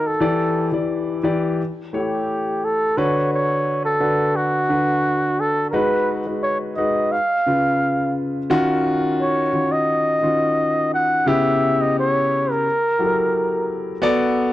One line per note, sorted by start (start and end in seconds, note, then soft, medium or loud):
0.00 0.23 D#3 medium
0.00 0.23 D#4 medium
0.00 0.23 F#4 medium
0.00 0.23 C#5 medium
0.07 0.75 A4 medium
0.20 0.66 E3 medium
0.20 0.66 E4 medium
0.20 0.67 G4 medium
0.20 0.67 D5 medium
0.72 1.18 E3 medium
0.72 1.18 E4 medium
0.72 1.19 G4 medium
0.72 1.19 D5 medium
1.23 1.59 E3 medium
1.23 1.59 E4 medium
1.23 1.59 G4 medium
1.23 1.59 D5 medium
1.93 2.84 A3 medium
1.93 2.85 E4 medium
1.93 2.85 G4 medium
1.93 2.66 G4 medium
1.93 2.85 C#5 medium
2.65 2.99 A4 medium
2.97 3.88 D3 medium
2.97 3.88 D4 medium
2.97 3.89 F#4 medium
2.97 3.89 B4 loud
2.97 3.32 C#5 medium
3.34 3.81 C#5 medium
3.85 4.38 A4 medium
4.00 4.61 D3 medium
4.00 4.61 D4 medium
4.00 4.62 F#4 medium
4.00 4.62 B4 medium
4.36 5.42 F#4 loud
4.69 5.61 D3 medium
4.69 5.61 D4 medium
4.69 5.61 F#4 medium
4.69 5.61 B4 medium
5.40 5.67 A4 medium
5.70 6.19 G#3 medium
5.70 6.19 D#4 medium
5.70 6.19 F#4 medium
5.70 5.76 A#4 medium
5.70 6.19 B4 medium
5.75 6.16 B4 medium
6.26 6.71 G#3 medium
6.26 6.72 D#4 medium
6.26 6.72 F#4 medium
6.26 6.72 B4 medium
6.43 6.58 C#5 medium
6.76 7.12 G#3 medium
6.76 7.12 D#4 medium
6.76 7.12 F#4 medium
6.76 7.13 B4 medium
6.76 7.14 D#5 medium
7.12 8.16 F5 loud
7.46 8.38 C#3 medium
7.46 8.38 C#4 medium
7.46 8.38 F4 medium
7.46 8.38 B4 medium
8.50 9.41 D#3 loud
8.50 9.41 C#4 loud
8.50 9.41 F4 medium
8.50 9.42 F#4 loud
9.21 9.74 C#5 medium
9.53 10.14 D#3 medium
9.53 10.14 C#4 medium
9.53 10.14 F4 medium
9.53 10.14 F#4 medium
9.72 10.93 D#5 loud
10.22 11.14 D#3 medium
10.22 11.14 C#4 medium
10.22 11.14 F4 medium
10.22 11.14 F#4 medium
10.94 11.30 F#5 loud
11.26 12.48 C#3 medium
11.26 12.48 B3 medium
11.26 12.48 E4 medium
11.26 12.49 G4 loud
11.26 11.83 E5 loud
11.81 11.97 D#5 medium
11.99 12.53 C#5 medium
12.51 13.70 A#4 medium
12.99 13.90 F#3 medium
12.99 13.91 E4 medium
12.99 13.91 G4 medium
12.99 13.06 A4 medium
13.07 13.94 A#4 medium
14.02 14.53 B3 loud
14.02 14.53 F#4 loud
14.02 14.53 A4 loud
14.02 14.53 D5 loud